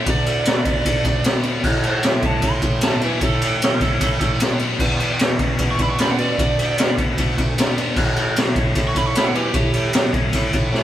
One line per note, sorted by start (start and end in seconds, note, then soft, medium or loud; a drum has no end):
0.06 0.23 D2 medium
0.06 0.24 D3 medium
0.06 0.25 A3 medium
0.06 1.23 D5 loud
0.06 kick loud
0.06 ride medium
0.26 0.43 D2 medium
0.26 0.44 D3 medium
0.26 0.45 A3 medium
0.26 ride medium
0.45 0.63 D2 medium
0.45 0.63 D3 medium
0.45 0.64 B3 loud
0.45 snare loud
0.45 ride loud
0.65 0.82 D2 medium
0.65 0.83 D3 medium
0.65 0.83 B3 medium
0.65 kick loud
0.65 ride medium
0.85 1.02 D2 medium
0.85 1.03 D3 medium
0.85 1.03 A3 loud
0.85 kick medium
0.85 ride loud
1.05 1.22 D2 medium
1.05 1.23 D3 medium
1.05 1.23 A3 medium
1.05 kick medium
1.05 ride medium
1.24 1.41 D2 medium
1.24 1.43 D3 medium
1.24 1.43 B3 medium
1.24 snare loud
1.24 ride loud
1.43 1.61 D2 medium
1.43 1.62 D3 medium
1.43 1.62 B3 medium
1.43 ride medium
1.64 1.99 A2 medium
1.64 1.82 A2 medium
1.64 1.82 E3 loud
1.64 kick loud
1.64 crash loud
1.83 2.02 A2 medium
1.83 2.02 E3 medium
1.83 2.05 C5 medium
1.83 ride medium
2.03 2.38 A2 loud
2.03 2.22 A2 medium
2.03 2.22 F#3 loud
2.03 2.23 E5 medium
2.03 snare loud
2.03 ride loud
2.22 2.41 A2 medium
2.22 2.42 F#3 medium
2.22 2.44 A5 medium
2.22 kick medium
2.22 ride medium
2.42 2.60 A2 medium
2.42 2.61 A2 medium
2.42 2.62 E3 medium
2.42 2.82 C6 loud
2.42 kick medium
2.42 ride medium
2.62 2.80 A2 medium
2.62 2.81 E3 medium
2.62 kick medium
2.62 ride medium
2.81 3.00 A2 medium
2.81 3.00 F#3 medium
2.81 3.02 A5 medium
2.81 snare loud
2.81 ride loud
3.01 3.21 A2 medium
3.01 3.20 E3 medium
3.01 3.21 F#3 medium
3.01 3.21 E5 medium
3.01 ride medium
3.21 3.39 A2 medium
3.21 3.40 A2 medium
3.21 3.41 E3 medium
3.21 4.38 A4 loud
3.21 kick loud
3.21 ride medium
3.42 3.60 A2 medium
3.42 3.60 E3 medium
3.42 ride medium
3.62 3.79 A2 medium
3.62 3.80 A2 loud
3.62 3.80 F#3 medium
3.62 snare loud
3.62 ride loud
3.81 3.98 A2 medium
3.81 3.99 A2 medium
3.81 3.99 F#3 medium
3.81 kick loud
3.81 ride medium
4.00 4.18 A2 medium
4.00 4.19 A2 medium
4.00 4.19 E3 medium
4.00 kick medium
4.00 ride loud
4.20 4.38 A2 medium
4.20 4.39 A2 medium
4.20 4.39 E3 medium
4.20 kick medium
4.20 ride medium
4.40 4.58 A2 medium
4.40 4.59 A2 medium
4.40 4.59 F#3 medium
4.40 snare loud
4.40 ride loud
4.59 4.78 A2 medium
4.59 4.78 F#3 medium
4.59 ride medium
4.79 5.14 E2 medium
4.79 4.98 E2 medium
4.79 4.99 B2 medium
4.79 kick loud
4.79 crash loud
5.00 5.18 E2 medium
5.00 5.18 B2 medium
5.00 ride medium
5.19 5.37 E2 medium
5.19 5.55 E2 medium
5.19 5.37 C#3 loud
5.19 snare loud
5.19 ride loud
5.39 5.57 E2 medium
5.39 5.58 C#3 medium
5.39 kick medium
5.39 ride medium
5.58 5.76 E2 medium
5.58 5.77 E2 medium
5.58 5.78 B2 medium
5.58 kick medium
5.58 ride medium
5.71 5.79 C#6 loud
5.78 5.96 E2 medium
5.78 5.98 E2 medium
5.78 5.97 B2 medium
5.78 kick medium
5.78 ride medium
5.82 5.90 B5 loud
5.90 5.99 C#6 medium
5.98 6.16 E2 medium
5.98 6.17 E2 medium
5.98 6.17 C#3 medium
5.98 6.09 B5 medium
5.98 snare loud
5.98 ride medium
6.11 6.19 F#5 loud
6.17 6.37 E2 medium
6.17 6.35 B2 medium
6.17 6.37 C#3 medium
6.17 6.95 D5 loud
6.17 ride medium
6.38 6.55 D2 medium
6.38 6.56 D3 medium
6.38 6.57 A3 medium
6.38 kick loud
6.38 ride medium
6.58 6.75 D2 medium
6.58 6.77 D3 medium
6.58 6.77 A3 medium
6.58 ride medium
6.77 6.94 D2 medium
6.77 6.96 D3 medium
6.77 6.96 B3 medium
6.77 snare loud
6.77 ride loud
6.98 7.15 D2 medium
6.98 7.15 D3 medium
6.98 7.16 B3 medium
6.98 kick medium
6.98 ride medium
7.18 7.35 D2 medium
7.18 7.36 D3 medium
7.18 7.36 A3 loud
7.18 kick medium
7.18 ride loud
7.38 7.55 D2 medium
7.38 7.55 D3 medium
7.38 7.56 A3 medium
7.38 kick medium
7.38 ride medium
7.56 7.74 D2 medium
7.56 7.75 D3 medium
7.56 7.75 B3 medium
7.56 snare loud
7.56 ride loud
7.77 7.97 G2 medium
7.77 7.95 B3 medium
7.77 ride medium
7.96 8.31 A2 medium
7.96 8.14 A2 medium
7.96 8.14 E3 medium
7.96 kick loud
7.96 crash loud
8.16 8.34 A2 medium
8.16 8.34 E3 medium
8.16 ride medium
8.36 8.71 A2 medium
8.36 8.54 A2 medium
8.36 8.54 F#3 medium
8.36 snare loud
8.36 ride loud
8.56 8.74 A2 medium
8.56 8.74 F#3 medium
8.56 kick loud
8.56 ride medium
8.75 8.93 A2 medium
8.75 8.93 A2 loud
8.75 8.93 E3 loud
8.75 kick medium
8.75 ride loud
8.88 8.97 C#6 loud
8.95 9.12 A2 medium
8.95 9.13 A2 medium
8.95 9.13 E3 medium
8.95 9.06 B5 loud
8.95 kick medium
8.95 ride medium
9.06 9.16 C#6 loud
9.14 9.32 A2 loud
9.14 9.33 A2 medium
9.14 9.33 F#3 medium
9.14 9.25 B5 medium
9.14 snare loud
9.14 ride loud
9.26 9.35 F#5 loud
9.35 9.53 A2 medium
9.35 9.52 E3 medium
9.35 9.53 F#3 medium
9.35 10.11 G4 loud
9.35 ride medium
9.53 9.71 A2 medium
9.53 9.73 A2 medium
9.53 9.73 E3 medium
9.53 kick loud
9.53 ride medium
9.73 9.91 A2 loud
9.73 9.93 A2 medium
9.73 9.93 E3 medium
9.73 ride medium
9.93 10.11 A2 medium
9.93 10.12 A2 medium
9.93 10.12 F#3 loud
9.93 snare loud
9.93 ride loud
10.13 10.31 A2 medium
10.13 10.32 A2 medium
10.13 10.32 F#3 medium
10.13 kick medium
10.13 ride medium
10.33 10.51 A2 medium
10.33 10.52 E3 medium
10.33 kick medium
10.33 ride loud
10.52 10.71 A2 medium
10.52 10.71 E3 medium
10.52 kick medium
10.52 ride medium
10.71 10.83 A2 loud
10.71 10.83 A2 medium
10.71 10.83 F#3 medium
10.71 snare medium